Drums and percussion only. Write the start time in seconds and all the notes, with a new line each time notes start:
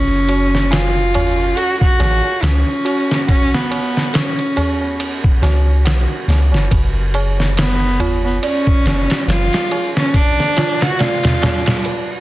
0.29 ride, tabla na
0.54 snare, tabla na
0.72 snare, ride, tabla na
1.14 ride, tabla na, tabla ge
1.39 tabla na
1.57 ride, tabla na
1.81 kick
2.00 snare, ride, tabla na
2.24 tabla na
2.43 snare, ride, tabla na
2.85 ride, tabla na
3.09 snare, tabla na
3.28 kick, ride, tabla na
3.54 snare
3.71 ride, tabla na
3.97 snare, tabla na
4.14 snare, ride, tabla na
4.39 ride
4.57 ride, tabla na, tabla ge
4.81 tabla na
5.00 ride, tabla na
5.24 kick
5.43 snare, ride, tabla na
5.66 tabla na
5.85 snare, ride, tabla na
6.29 snare, ride, tabla na
6.52 snare, tabla na
6.71 kick, ride, tabla na
7.14 ride, tabla na
7.38 snare, tabla na
7.57 snare, ride, tabla na
7.99 ride, tabla na, tabla ge
8.24 tabla na
8.43 ride, tabla na
8.67 kick
8.86 snare, ride, tabla na
9.10 snare, ride, tabla na
9.29 snare, ride, tabla na
9.53 snare, ride
9.71 ride, tabla na
9.96 snare, tabla na
10.14 kick, ride, tabla na
10.40 snare
10.56 snare, ride, tabla na
10.81 snare, ride, tabla na
10.99 snare, ride, tabla na
11.23 snare, ride, tabla ge
11.42 snare, ride, tabla na, tabla ge
11.66 snare, ride, tabla na
11.85 ride, tabla na